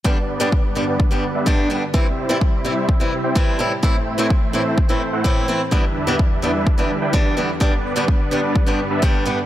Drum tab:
BD |o-o-o-o-|o-o-o-o-|o-o-o-o-|o-o-o-o-|

BD |o-o-o-o-|